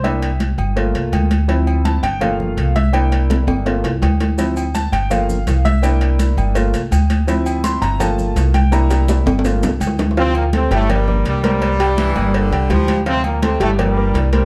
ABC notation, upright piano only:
X:1
M:4/4
L:1/8
Q:1/4=166
K:Gdor
V:1 name="Upright piano"
e2 z6 | z2 a g f3 e | g2 z6 | z2 a g f3 e |
g2 z6 | z2 c' b a3 g | b2 z6 | [F,Ff]2 [A,Ac] [G,Gg] [B,Bd] [B,Bd]2 [B,Bc]- |
[B,Bc] [G,Gg]2 [B,Bd]2 [G,Gg] [G,Gg]2 | [F,Ff]2 [A,Ac] [G,Gg] [B,Bd] [B,Bd]2 [B,Bc] |]
V:2 name="Upright piano"
[B,DE] z3 [A,B,F]3 z | [F,CE]3 z [A,B,F]3 z | [B,DE]4 [A,B,F] z3 | [F,CE] z3 [A,B,F] z3 |
[B,DE]4 [A,B,F] z3 | [F,CE]4 [A,B,F]3 z | [B,DE]4 [A,B,F] z3 | z8 |
z8 | z8 |]